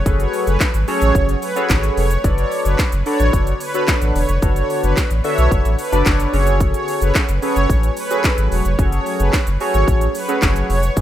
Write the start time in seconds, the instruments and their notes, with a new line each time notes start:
Already playing: ambient pad F#3 A3 G#5
0.06 sub bass F#1, analog polysynth C#4 F#4 G#4 A4 B4, kick, closed hi-hat, shaker
0.20 supersaw synth C#5, closed hi-hat, shaker
0.33 open hi-hat, shaker
0.47 sub bass F#1, supersaw synth B4, closed hi-hat, shaker
0.60 kick, snare, clap, closed hi-hat, shaker
0.74 sub bass G#1, closed hi-hat, shaker
0.88 analog polysynth C#4 F#4 G#4 A4 C#5, supersaw synth C#5, open hi-hat, shaker
1.02 sub bass A1, closed hi-hat, shaker
1.15 sub bass F#1, kick, closed hi-hat, shaker
1.29 closed hi-hat, shaker
1.42 supersaw synth B4, open hi-hat, shaker
1.56 analog polysynth C#4 F#4 G#4 A4 C#5, closed hi-hat, shaker
1.69 sub bass G#1, supersaw synth C#5, kick, snare, clap, closed hi-hat, shaker
1.83 closed hi-hat, shaker
1.97 sub bass F1, supersaw synth C#5, open hi-hat, shaker
2.11 closed hi-hat, shaker
2.24 sub bass F#1, ambient pad D3 B3 A4, analog polysynth D4 F#4 A4 B4 D5, kick, closed hi-hat, shaker
2.38 supersaw synth C#5, closed hi-hat, shaker
2.52 open hi-hat, shaker
2.65 sub bass F#1, supersaw synth B4, closed hi-hat, shaker
2.79 kick, snare, clap, closed hi-hat, shaker
2.92 sub bass F#1, closed hi-hat, shaker
3.06 analog polysynth D4 F#4 A4 B4 D5, supersaw synth C#5, open hi-hat, shaker
3.20 sub bass A1, closed hi-hat, shaker
3.33 sub bass F#1, kick, closed hi-hat, shaker
3.47 closed hi-hat, shaker
3.60 supersaw synth B4, open hi-hat, shaker
3.74 analog polysynth D4 F#4 A4 B4 C#5, closed hi-hat, shaker
3.88 kick, snare, clap, closed hi-hat, shaker
4.02 sub bass A1, closed hi-hat, shaker
4.15 sub bass E1, supersaw synth C#5, open hi-hat, shaker
4.29 sub bass F1, closed hi-hat, shaker
4.42 sub bass F#1, analog polysynth D4 F#4 A4 B4 C#5, kick, closed hi-hat, shaker
4.56 supersaw synth C#5, closed hi-hat, shaker
4.70 open hi-hat, shaker
4.83 sub bass F#1, supersaw synth B4, closed hi-hat, shaker
4.97 kick, snare, clap, closed hi-hat, shaker
5.11 sub bass A1, closed hi-hat, shaker
5.24 analog polysynth D4 F#4 A4 B4 E5, supersaw synth C#5, open hi-hat, shaker
5.38 sub bass B1, closed hi-hat, shaker
5.51 sub bass F#1, kick, closed hi-hat, shaker
5.65 sub bass A1, closed hi-hat, shaker
5.79 supersaw synth B4, open hi-hat, shaker
5.92 sub bass F#1, analog polysynth D4 F#4 A4 B4 D5, closed hi-hat, shaker
6.06 sub bass F#1, supersaw synth C#5, kick, snare, clap, closed hi-hat, shaker
6.20 closed hi-hat, shaker
6.33 sub bass F#1, ambient pad F#3 A3 G#5, analog polysynth C#4 F#4 G#4 A4 C#5, supersaw synth C#5, open hi-hat, shaker
6.47 closed hi-hat, shaker
6.60 kick, closed hi-hat, shaker
6.74 supersaw synth C#5, closed hi-hat, shaker
6.88 open hi-hat, shaker
7.01 sub bass F#1, supersaw synth B4, closed hi-hat, shaker
7.15 kick, snare, clap, closed hi-hat, shaker
7.29 sub bass F#1, closed hi-hat, shaker
7.42 analog polysynth C#4 F#4 G#4 A4 B4, supersaw synth C#5, open hi-hat, shaker
7.56 sub bass F#1, closed hi-hat, shaker
7.70 sub bass A1, kick, closed hi-hat, shaker
7.83 closed hi-hat, shaker
7.97 supersaw synth B4, open hi-hat, shaker
8.10 analog polysynth C#4 F#4 G#4 A4 C#5, closed hi-hat, shaker
8.24 kick, snare, clap, closed hi-hat, shaker
8.38 sub bass G#1, closed hi-hat, shaker
8.51 sub bass E1, supersaw synth C#5, open hi-hat, shaker
8.65 sub bass F1, closed hi-hat, shaker
8.78 sub bass F#1, analog polysynth C#4 F#4 G#4 A4 C#5, kick, closed hi-hat, shaker
8.92 supersaw synth C#5, closed hi-hat, shaker
9.06 open hi-hat, shaker
9.20 sub bass F#1, supersaw synth B4, closed hi-hat, shaker
9.33 kick, snare, clap, closed hi-hat, shaker
9.47 sub bass F#1, closed hi-hat, shaker
9.60 analog polysynth C#4 F#4 G#4 A4 C#5, supersaw synth C#5, open hi-hat, shaker
9.74 sub bass G#1, closed hi-hat, shaker
9.88 sub bass A1, kick, closed hi-hat, shaker
10.01 closed hi-hat, shaker
10.15 supersaw synth B4, open hi-hat, shaker
10.28 analog polysynth C#4 F#4 G#4 A4 C#5, closed hi-hat, shaker
10.42 sub bass F#1, supersaw synth C#5, kick, snare, clap, closed hi-hat, shaker
10.56 closed hi-hat, shaker
10.70 sub bass F1, supersaw synth C#5, open hi-hat, shaker
10.83 closed hi-hat, shaker
10.97 sub bass F#1, analog polysynth C#4 E4 G#4 B4 C#5, kick, closed hi-hat, shaker